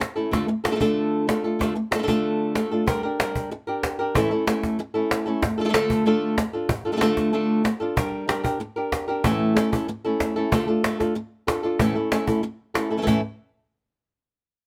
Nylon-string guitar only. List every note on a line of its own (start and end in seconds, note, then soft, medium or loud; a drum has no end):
0.00 muted nylon-string guitar stroke medium
0.16 0.31 A3 medium
0.16 0.32 C#4 medium
0.16 0.32 E4 medium
0.16 0.32 A4 medium
0.31 0.47 D3 medium
0.31 0.47 A3 medium
0.31 0.48 D4 medium
0.31 0.48 F4 medium
0.31 0.48 A4 medium
0.48 muted nylon-string guitar stroke medium
0.64 0.70 A3 medium
0.64 0.68 D4 soft
0.64 0.67 F4 medium
0.64 0.66 A4 medium
0.64 0.71 A4 medium
0.71 0.74 A3 medium
0.71 0.75 D4 medium
0.71 0.75 F4 medium
0.71 0.75 A4 medium
0.75 0.79 A3 medium
0.75 0.79 D4 medium
0.75 0.79 F4 medium
0.75 0.80 A4 medium
0.80 1.27 D3 medium
0.80 1.26 A3 medium
0.80 1.27 D4 medium
0.80 1.27 F4 medium
0.80 1.28 A4 loud
1.27 1.43 A3 medium
1.27 1.44 D4 medium
1.27 1.44 F4 medium
1.27 1.43 A4 medium
1.44 1.59 D4 medium
1.44 1.60 F4 soft
1.44 1.60 A4 medium
1.59 1.74 D3 medium
1.59 1.74 A3 medium
1.59 1.75 D4 medium
1.59 1.75 F4 medium
1.59 1.75 A4 medium
1.75 muted nylon-string guitar stroke medium
1.91 1.97 A3 medium
1.91 1.95 D4 soft
1.91 1.94 F4 soft
1.91 1.94 A4 medium
1.95 2.02 A3 medium
1.95 2.02 D4 medium
1.95 1.98 A4 medium
1.99 2.06 A3 medium
1.99 2.07 D4 medium
1.99 2.02 F4 medium
1.99 2.03 A4 medium
2.04 2.55 D3 medium
2.04 2.54 A3 medium
2.04 2.07 F4 medium
2.04 2.07 A4 medium
2.08 2.55 D4 medium
2.08 2.55 F4 medium
2.08 2.55 A4 loud
2.55 2.71 A3 medium
2.55 2.71 D4 medium
2.55 2.71 F4 medium
2.55 2.70 A4 medium
2.71 2.86 D4 soft
2.71 2.87 F4 soft
2.71 2.87 A4 medium
2.87 3.02 G3 medium
2.87 3.03 D4 medium
2.87 3.03 G4 medium
2.87 3.02 A#4 medium
3.03 3.19 D4 soft
3.03 3.19 G4 medium
3.03 3.19 A#4 medium
3.19 3.50 G3 medium
3.19 3.50 D4 medium
3.19 3.51 G4 medium
3.19 3.51 A#4 medium
3.51 muted nylon-string guitar stroke medium
3.67 3.99 D4 medium
3.67 3.99 G4 medium
3.67 3.98 A#4 medium
3.99 4.15 D4 medium
3.99 4.15 G4 medium
3.99 4.14 A#4 medium
4.15 4.30 A2 medium
4.15 4.30 E3 medium
4.15 4.31 A3 medium
4.15 4.31 C#4 medium
4.15 4.30 E4 medium
4.15 4.30 A4 medium
4.31 4.45 A3 medium
4.31 4.46 C#4 medium
4.31 4.46 E4 medium
4.31 4.46 A4 medium
4.47 4.78 A3 medium
4.47 4.78 C#4 medium
4.47 4.78 E4 medium
4.47 4.79 A4 medium
4.79 muted nylon-string guitar stroke medium
4.94 5.26 A3 medium
4.94 5.26 C#4 medium
4.94 5.25 E4 medium
4.94 5.24 A4 medium
5.26 5.42 A3 medium
5.26 5.42 C#4 medium
5.26 5.42 E4 medium
5.26 5.41 A4 medium
5.42 muted nylon-string guitar stroke medium
5.58 5.63 A3 medium
5.58 5.62 D4 medium
5.58 5.61 F4 medium
5.58 5.60 A4 medium
5.58 5.65 A4 medium
5.65 5.68 A3 medium
5.65 5.68 D4 medium
5.65 5.69 F4 medium
5.65 5.69 A4 medium
5.69 5.73 A3 medium
5.69 5.73 D4 medium
5.69 5.73 F4 medium
5.69 5.73 A4 medium
5.74 6.04 D3 medium
5.74 6.05 A3 medium
5.74 6.05 D4 loud
5.74 6.05 F4 loud
5.74 6.05 A4 loud
6.06 6.37 D3 loud
6.06 6.37 A3 loud
6.06 6.37 D4 loud
6.06 6.38 F4 loud
6.06 6.38 A4 loud
6.38 muted nylon-string guitar stroke medium
6.53 6.70 D4 soft
6.53 6.69 F4 medium
6.53 6.69 A4 medium
6.69 muted nylon-string guitar stroke medium
6.85 6.91 D4 medium
6.85 6.91 F4 medium
6.85 6.92 A4 medium
6.92 6.95 A3 medium
6.92 6.96 D4 medium
6.92 6.96 F4 medium
6.92 6.96 A4 medium
6.96 7.00 A3 medium
6.96 7.00 D4 medium
6.96 7.01 F4 medium
6.96 7.01 A4 medium
7.01 7.32 D3 medium
7.01 7.32 A3 loud
7.01 7.33 D4 loud
7.01 7.33 F4 loud
7.01 7.33 A4 loud
7.33 7.63 D3 medium
7.33 7.64 A3 loud
7.33 7.64 D4 loud
7.33 7.64 F4 loud
7.33 7.64 A4 loud
7.64 muted nylon-string guitar stroke medium
7.80 7.96 D4 medium
7.80 7.96 F4 medium
7.80 7.96 A4 medium
7.96 8.26 G3 medium
7.96 8.27 D4 medium
7.96 8.28 G4 medium
7.96 8.29 A#4 medium
8.28 8.43 G3 medium
8.28 8.44 D4 medium
8.28 8.43 G4 medium
8.28 8.42 A#4 medium
8.44 8.59 D4 soft
8.44 8.60 G4 medium
8.44 8.59 A#4 medium
8.60 muted nylon-string guitar stroke medium
8.76 9.08 D4 soft
8.76 9.08 G4 medium
8.76 9.07 A#4 medium
9.08 9.24 D4 medium
9.08 9.24 G4 medium
9.08 9.23 A#4 medium
9.24 9.55 A2 medium
9.24 9.56 E3 medium
9.24 9.54 A3 loud
9.24 9.55 C#4 medium
9.24 9.56 E4 loud
9.24 9.56 A4 loud
9.55 9.71 A3 medium
9.55 9.72 C#4 medium
9.55 9.72 E4 medium
9.55 9.71 A4 medium
9.72 9.88 A3 soft
9.72 9.88 C#4 medium
9.72 9.88 E4 medium
9.72 9.88 A4 medium
9.88 muted nylon-string guitar stroke medium
10.05 10.37 A3 medium
10.05 10.36 C#4 medium
10.05 10.36 E4 medium
10.05 10.35 A4 medium
10.36 10.51 A3 medium
10.36 10.52 C#4 medium
10.36 10.52 E4 medium
10.36 10.51 A4 medium
10.52 10.67 D3 loud
10.52 10.67 A3 medium
10.52 10.68 D4 medium
10.52 10.67 F4 medium
10.52 10.66 A4 medium
10.68 10.83 D4 medium
10.68 10.84 F4 medium
10.68 10.83 A4 medium
10.84 10.99 A3 medium
10.84 11.00 D4 medium
10.84 11.00 F4 medium
10.84 10.99 A4 medium
11.00 11.14 D4 medium
11.00 11.15 F4 medium
11.00 11.15 A4 medium
11.15 muted nylon-string guitar stroke medium
11.47 11.64 D4 medium
11.47 11.63 F4 medium
11.47 11.62 A4 medium
11.63 11.80 D4 medium
11.63 11.79 F4 medium
11.63 11.79 A4 medium
11.79 11.95 A2 medium
11.79 11.95 E3 medium
11.79 11.95 A3 medium
11.79 11.95 C#4 medium
11.79 11.95 E4 medium
11.79 11.94 A4 medium
11.95 12.10 A3 soft
11.95 12.11 C#4 soft
11.95 12.11 E4 medium
11.95 12.11 A4 medium
12.11 12.27 A3 medium
12.11 12.27 C#4 medium
12.11 12.27 E4 medium
12.11 12.26 A4 medium
12.27 12.42 A3 medium
12.27 12.42 C#4 medium
12.27 12.43 E4 medium
12.27 12.42 A4 medium
12.43 muted nylon-string guitar stroke medium
12.74 12.91 A3 medium
12.74 12.91 C#4 medium
12.74 12.90 E4 medium
12.74 12.89 A4 medium
12.90 12.97 A3 soft
12.90 12.97 C#4 medium
12.90 12.97 E4 medium
12.90 12.98 A4 medium
12.97 13.01 E3 soft
12.97 13.01 A3 medium
12.97 13.02 C#4 medium
12.97 13.02 E4 medium
12.97 13.02 A4 medium
13.02 13.06 E3 medium
13.02 13.06 A3 medium
13.02 13.06 C#4 medium
13.02 13.07 E4 medium
13.02 13.07 A4 medium
13.07 13.20 A2 medium
13.07 13.20 E3 medium
13.07 13.20 A3 medium
13.07 13.20 C#4 medium
13.07 13.20 E4 loud
13.07 13.20 A4 medium